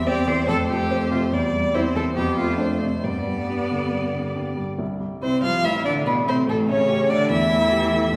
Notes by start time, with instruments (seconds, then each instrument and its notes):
Already playing: grand piano E2 G3, viola C4
0.06 grand piano C4 C5, cello G4, violin D5
0.27 grand piano E3, cello C5
0.47 grand piano F2, viola A3, cello A4, violin C5
0.68 grand piano F3, cello G4
0.90 grand piano C4 C5, violin C5
1.11 grand piano C3, cello F4
1.32 grand piano E2, viola G3, violin D5
1.53 grand piano G3
1.73 viola C4, grand piano C4 C5, cello E4, violin C5
1.96 grand piano E3, cello A4
2.15 grand piano F2, viola B3, cello G4, violin C5
2.37 grand piano A3, cello F4
2.57 viola A3, cello D4, grand piano F4 C5
2.80 grand piano C3, cello C4
3.03 grand piano G2, viola G3, cello B3, violin D5
3.27 grand piano G3
3.49 grand piano D4 G4
3.71 grand piano D3
3.92 grand piano G3
4.14 grand piano D3
4.35 grand piano D4 G4
4.57 grand piano G3
4.79 grand piano C2
5.00 grand piano G3
5.21 cello C3, viola C4, grand piano E4, violin C5
5.43 cello F3, grand piano G3, viola F4, violin F5
5.63 grand piano A1, cello E3, viola E4, violin E5
5.84 cello D3, grand piano A3, viola D4, violin D5
6.05 cello B2, viola B3, grand piano E4, violin B4
6.26 cello C3, grand piano A3, viola C4, violin C5
6.47 grand piano A1, cello A2, viola A3, violin A4
6.67 cello C#3, grand piano A3, viola C#4, violin C#5
6.88 grand piano G4
7.09 cello D3, grand piano A3, viola D4, violin D5
7.29 grand piano E2, cello E3, viola E4, violin E5
7.51 grand piano A3
7.71 grand piano G4
7.92 grand piano A3
8.13 grand piano D2, cello F3, viola D4